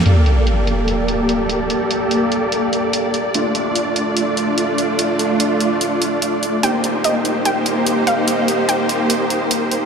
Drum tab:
HH |xxxxxxxx|xxxxxxxx|xxxxxxxx|xxxxxxxx|

HH |xxxxxxxx|xxxxxxxx|